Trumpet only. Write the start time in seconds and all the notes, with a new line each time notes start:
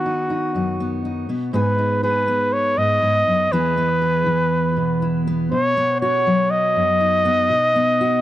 Already playing: F#4
1.54 B4
2.04 B4
2.53 C#5
2.78 D#5
3.52 B4
5.51 C#5
6.01 C#5
6.50 D#5